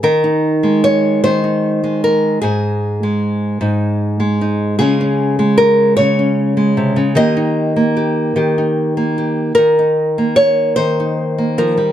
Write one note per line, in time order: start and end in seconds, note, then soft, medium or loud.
0.03 1.22 D#3 medium
0.03 0.83 A#4 medium
0.24 1.43 D#4 soft
0.63 1.83 G#3 medium
0.84 1.23 C#5 loud
1.24 2.38 D#3 medium
1.24 2.03 C5 loud
1.44 2.38 D#4 soft
1.84 3.03 G#3 medium
2.04 2.41 A#4 medium
2.42 3.60 G#2 medium
2.42 4.77 G#4 medium
3.03 4.19 G#3 medium
3.61 4.79 G#2 medium
3.61 4.40 D#4 soft
4.20 4.74 G#3 medium
4.41 4.80 D#4 soft
4.79 5.97 C#3 medium
4.79 5.38 G#3 medium
4.79 5.00 C#4 medium
4.79 7.12 F4 medium
4.79 5.57 G#4 medium
5.01 6.18 C#4 soft
5.39 6.56 G#3 medium
5.58 5.96 A#4 medium
5.97 6.95 C#3 medium
5.97 7.16 C#5 loud
6.19 7.12 C#4 soft
6.57 7.11 G#3 medium
6.77 6.97 C3 medium
6.96 7.16 C#3 medium
7.15 8.35 D#3 medium
7.15 7.76 A#3 medium
7.15 7.36 D#4 medium
7.15 7.96 G4 medium
7.15 9.15 D#5 loud
7.37 8.57 D#4 soft
7.76 8.96 A#3 medium
7.97 8.36 G4 soft
8.36 9.51 D#3 medium
8.36 9.16 G4 soft
8.58 9.78 D#4 soft
8.97 9.52 A#3 medium
9.18 9.52 G4 soft
9.55 10.76 D#3 medium
9.55 11.17 A#4 loud
9.79 10.98 D#4 soft
10.18 11.37 A#3 medium
10.36 10.76 C#5 loud
10.76 11.92 D#3 medium
10.76 11.92 C5 loud
11.00 11.92 D#4 soft
11.38 11.77 A#3 medium
11.58 11.77 F3 medium
11.58 11.92 A#4 medium
11.77 11.92 G3 medium